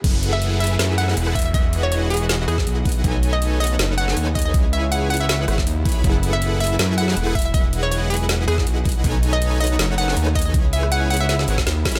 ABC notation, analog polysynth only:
X:1
M:4/4
L:1/16
Q:"Swing 16ths" 1/4=160
K:E
V:1 name="Analog polysynth"
[EGABf]6 [EGABe]4- [EGABe] [EGABf]3 z2 | [EGBdf]6 [EGBdf]4- [EGBdf] [Bdf]4- [Bdf] | [DABcg]6 [DABcf]4- [DABcf] [DABcg]4- [DABcg] | [EGBcg]6 [EGBcf]4- [EGBcf] z3 [EGBcb]2 |
[EGABf]6 [EGABe]4- [EGABe] [EGABf]3 z2 | [EGBdf]6 [EGBdf]4- [EGBdf] [EGf]4- [EGf] | [DABcg]6 [DABcf]4- [DABcf] [DABcg]4- [DABcg] | [EGBcg]6 [EGBcf]4- [EGBcf] z3 [EGBcb]2 |]